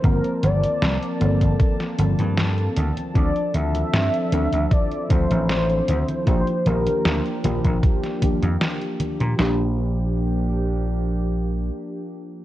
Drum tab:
HH |xxxxxxxxxxxxxxxx|xxxxxxxxxxxxxxxx|xxxxxxxxxxxxxxxx|----------------|
SD |----o----o--o---|----o-------o---|----o----o--o---|o---------------|
CG |o-ooo-ooo-ooo-oo|o-ooo-ooo-ooo-oo|o-ooo-ooo-ooo-oo|----------------|
BD |o------oo-------|o-------o-o-----|o------oo-o-----|----------------|